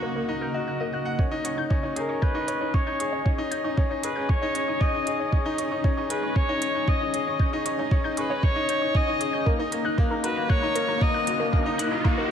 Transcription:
Already playing: C#3 A#3 D#4 F#4 D#5
0.02 A#3 A#4
0.15 A#3 A#4
0.28 D#4 A#5
0.41 A#4 G6
0.54 F#4 D#5
0.67 F#4 F#6
0.80 A#4 D#5
0.93 F#4 F#6
1.05 F#5 F#6
1.19 C#4 D#4 G#4 C#5 D#5, kick
1.31 D#4 C#5
1.44 C#4 C#6, closed hi-hat
1.57 D#4 G6
1.70 C#4 C#6, kick
1.83 D#4 C#5
1.96 G#4 A#4 C#5, closed hi-hat
2.09 C#4 C#6
2.22 C#4 B4 G6, kick
2.34 D#4 C#6
2.47 C#4 C#5, closed hi-hat
2.61 D#4 C#5
2.74 C#4 C#5 C#6, kick
2.87 D#4 G6
3.00 G#4 C#6, closed hi-hat
3.13 C#4 C#5
3.25 C#4 C#5, kick
3.38 D#4 C#6
3.51 C#4 G6, closed hi-hat
3.64 D#4 C#6
3.77 C#4 C#5, kick
3.90 D#4 C#5
4.03 G#4 B4 C#6, closed hi-hat
4.16 C#4 G6
4.29 C#4 C#5 C#6, kick
4.42 D#4 C#5
4.55 C#4 C#5, closed hi-hat
4.68 D#4 C#6
4.80 C#4 D#5 G6, kick
4.94 D#4 C#6
5.07 G#4 C#5, closed hi-hat
5.20 C#4 C#5
5.32 C#4 C#6, kick
5.45 D#4 G6
5.58 C#4 C#6, closed hi-hat
5.71 D#4 C#5
5.84 C#4 C#5, kick
5.97 D#4 C#6
6.10 G#4 B4 G6, closed hi-hat
6.23 C#4 C#6
6.35 C#4 C#5, kick
6.49 D#4 C#5
6.62 C#4 C#6, closed hi-hat
6.75 D#4 G6
6.88 C#4 D#5 C#6, kick
7.01 D#4 C#5
7.14 G#4 C#5, closed hi-hat
7.27 C#4 C#6
7.39 C#4 G6, kick
7.53 D#4 C#6
7.65 C#4 C#5, closed hi-hat
7.79 D#4 C#5
7.91 C#4 C#6, kick
8.04 D#4 G6
8.17 G#4 B4 C#6, closed hi-hat
8.30 C#4 C#5
8.43 C#4 C#5, kick
8.56 D#4 C#6
8.69 C#4 G6, closed hi-hat
8.82 D#4 C#6
8.95 C#4 C#5 D#5, kick
9.08 D#4 C#5
9.20 G#4 C#6, closed hi-hat
9.33 C#4 G6
9.46 C#3 A#3 F#4 A#4 D#5, kick, riser
9.59 D#4 A#4
9.72 A#3 A#5, closed hi-hat
9.85 D#4 F#6
9.98 A#3 A#5, kick
10.11 D#4 A#4
10.24 F#4 A#4 B4, closed hi-hat
10.36 A#3 A#5
10.49 A#3 C#5 F#6, kick
10.62 D#4 A#5
10.75 A#3 A#4, closed hi-hat
10.88 D#4 A#4
11.01 A#3 D#5 A#5, kick
11.14 D#4 F#6
11.27 F#4 A#5, closed hi-hat
11.40 A#3 A#4
11.53 A#3 A#4, kick
11.66 D#4 A#5
11.78 A#3 F#6, closed hi-hat
11.91 D#4 A#5
12.04 A#3 A#4, kick
12.18 D#4 A#4

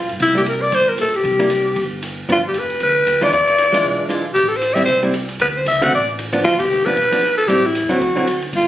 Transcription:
Already playing: F4
0.03 F2
0.09 G2, ride
0.20 C2 E4, kick, ride
0.35 G3 A#3 E4 G4
0.46 A#4, hi-hat pedal, ride
0.62 D5
0.72 G1 C5, kick, ride
0.89 A#4
0.96 A#1, hi-hat pedal, ride
1.01 A4
1.14 G4, ride
1.24 C2, kick, ride
1.39 G3 A#3 E4, ride
1.50 hi-hat pedal, ride
1.76 G1, kick, ride
2.02 hi-hat pedal, ride
2.29 G1 F3 B3 D4 F4, kick, ride
2.48 G4
2.54 F1, hi-hat pedal, ride
2.59 B4
2.70 ride
2.80 D2 B4, kick, ride
3.06 D2, hi-hat pedal, ride
3.21 E3 G#3 D4 F4 D5, ride
3.32 E2 D5, kick, ride
3.48 ride
3.58 hi-hat pedal, ride
3.72 E3 G#3 D4 F4, ride
3.84 B1, kick
4.09 E3 G#3 D4 F4, hi-hat pedal, ride
4.34 A1 G4, kick, ride
4.48 A4
4.57 C5
4.62 hi-hat pedal, ride
4.74 G3 C4 E4 E5, ride
4.86 C2 C5, kick, ride
5.03 G3 C4 E4
5.14 hi-hat pedal, ride
5.29 ride
5.40 D2 B4, kick, ride
5.57 C5
5.65 C#2 E5, hi-hat pedal, ride
5.82 D3 A3 C4 F#4 F#5, ride
5.92 A1 D5, kick
6.19 hi-hat pedal, ride
6.33 F3 B3 D4
6.44 G1 F4, kick, ride
6.59 G4, kick, ride
6.71 hi-hat pedal
6.86 F3 B3 D4 B4
6.97 B1, kick, ride
7.12 F3 B3 D4, ride
7.23 hi-hat pedal
7.37 A4, ride
7.48 A1 G3 C4 E4 G4, kick, ride
7.66 E4
7.75 hi-hat pedal, ride
7.83 E2
7.89 A2 D3 F#3 C4 E4 F#4, ride
8.01 D2, kick, ride
8.15 D3 F#3 C4 E4
8.27 hi-hat pedal, ride
8.42 ride
8.52 G1 F4, kick, ride

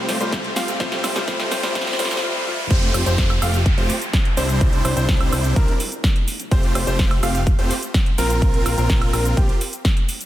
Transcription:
Already playing: C3 G3 A3 F4, riser
0.09 F1 A3 C4 F4 G4 C5, snare, open hi-hat, shaker
0.19 F2 C3 G3 A3 C4 F4 G4 C5, closed hi-hat, shaker
0.32 kick, snare, closed hi-hat, shaker
0.44 closed hi-hat
0.56 F2 A3 C4 F4 G4 F5, snare, open hi-hat, shaker
0.68 closed hi-hat, shaker
0.80 A#1 C3 G3 A3 C4 F4 G4 C5, kick, snare, closed hi-hat, shaker
0.92 snare, closed hi-hat
1.04 A#1 A3 C4 F4 G4 C5, snare, open hi-hat, high woodblock, shaker
1.15 A#1 C3 G3 A3 C4 F4 G4 C5, snare, closed hi-hat, shaker
1.27 C3 G3 A3 C4 F4 G4 C5, kick, snare, closed hi-hat, shaker
1.40 snare, closed hi-hat
1.52 A#1 A3 C4 F4 G4 C5, snare, open hi-hat, shaker
1.62 A#1 C3 G3 A3 C4 F4 G4 C5, snare, closed hi-hat, shaker
1.75 A#1 C3 G3 A3 C4 F4 G4 C5, kick, snare, closed hi-hat, shaker
1.81 snare
1.87 snare, closed hi-hat
1.93 snare
1.99 A#1 C3 G3 A3 C4 F4 G4 C5, snare, open hi-hat, shaker
2.05 snare
2.11 snare, closed hi-hat, shaker
2.17 snare
2.22 C3 G3 A3 F4
2.46 C3 G3 A3 F4
2.71 F1 A3 C4 F4 G4 C5, kick, closed hi-hat, crash, downlifter, shaker
2.82 closed hi-hat
2.94 F1 A3 C4 F4 G4 C5, open hi-hat, high woodblock, shaker
3.06 F1 A3 C4 F4 G4 C5, closed hi-hat, shaker
3.18 kick, snare, closed hi-hat, shaker
3.30 closed hi-hat, high woodblock
3.42 F1 A3 C4 F4 G4 F5, open hi-hat, high woodblock, shaker
3.54 closed hi-hat, shaker
3.66 kick, closed hi-hat, shaker
3.78 F1 A3 C4 F4 G4 C5, closed hi-hat
3.90 open hi-hat, shaker
4.02 closed hi-hat, shaker
4.13 kick, snare, closed hi-hat, shaker
4.25 closed hi-hat
4.37 C2 G3 C4 D4 E4 C5, open hi-hat, shaker
4.49 closed hi-hat, shaker
4.61 kick, closed hi-hat, shaker
4.73 closed hi-hat
4.85 C2 G3 C4 D4 E4 C5, open hi-hat, high woodblock, shaker
4.97 C2 G3 C4 D4 E4 C5, closed hi-hat, shaker
5.09 kick, snare, closed hi-hat, shaker
5.21 closed hi-hat, high woodblock
5.32 C2 G3 C4 D4 E4 C5, open hi-hat, high woodblock, shaker
5.44 closed hi-hat, shaker
5.56 C2 G3 C4 D4 E4 A#4, kick, closed hi-hat, shaker
5.68 closed hi-hat
5.80 open hi-hat, shaker
5.92 closed hi-hat, shaker
6.04 kick, snare, closed hi-hat, shaker
6.16 closed hi-hat
6.28 open hi-hat, shaker
6.40 closed hi-hat, shaker
6.51 F1 A3 C4 F4 G4 C5, kick, closed hi-hat, shaker
6.63 closed hi-hat
6.75 F1 A3 C4 F4 G4 C5, open hi-hat, high woodblock, shaker
6.87 F1 A3 C4 F4 G4 C5, closed hi-hat, shaker
6.99 kick, snare, closed hi-hat, shaker
7.11 closed hi-hat, high woodblock
7.23 F1 A3 C4 F4 G4 F5, open hi-hat, high woodblock, shaker
7.35 closed hi-hat, shaker
7.47 kick, closed hi-hat, shaker
7.59 F1 A3 C4 F4 G4 C5, closed hi-hat
7.71 open hi-hat, shaker
7.82 closed hi-hat, shaker
7.94 kick, snare, closed hi-hat, shaker
8.06 closed hi-hat
8.18 A#1 C4 F4 A#4, open hi-hat, shaker
8.30 closed hi-hat, shaker
8.42 kick, closed hi-hat, shaker
8.54 closed hi-hat
8.66 A#1 C4 F4 A#4, open hi-hat, high woodblock, shaker
8.78 A#1 C4 F4 A#4, closed hi-hat, shaker
8.90 kick, snare, closed hi-hat, shaker
9.02 closed hi-hat, high woodblock
9.13 A#1 C4 F4 A#4, open hi-hat, high woodblock, shaker
9.25 closed hi-hat, shaker
9.37 A#1 C4 F4 G4, kick, closed hi-hat, shaker
9.49 closed hi-hat
9.61 open hi-hat, shaker
9.73 closed hi-hat, shaker
9.85 kick, snare, closed hi-hat, shaker
9.97 closed hi-hat
10.09 open hi-hat, shaker
10.21 closed hi-hat, shaker

